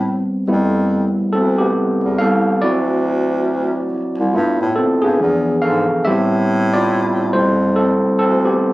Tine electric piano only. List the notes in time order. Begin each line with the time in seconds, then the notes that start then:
Already playing: G3 B3 C4
0.48 G3 A3 B3 E4
1.33 C4 A4
1.58 B3 G4
2.18 A4 F5
2.62 F#3 C4 E4 F#4 D5
4.33 A3 B3 E4 F4
4.76 C4 A4
5.02 B3 G#4
5.20 E3 F3 D4
5.62 A4 F5
6.05 G3 B3 C4 G4 E5
6.73 F4 D5
7.33 B2 G3 A3 E4 C5
7.76 C4 A4
8.19 C4 A4
8.45 B3 G4